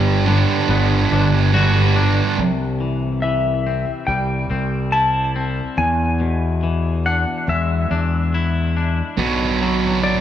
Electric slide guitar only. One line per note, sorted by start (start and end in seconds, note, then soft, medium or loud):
0.00 1.49 B5 medium
3.22 4.04 E5 medium
4.07 4.89 G5 medium
4.92 5.74 A5 medium
5.78 7.02 G#5 medium
7.06 7.45 F#5 medium
7.49 8.72 E5 medium
10.03 10.21 D5 medium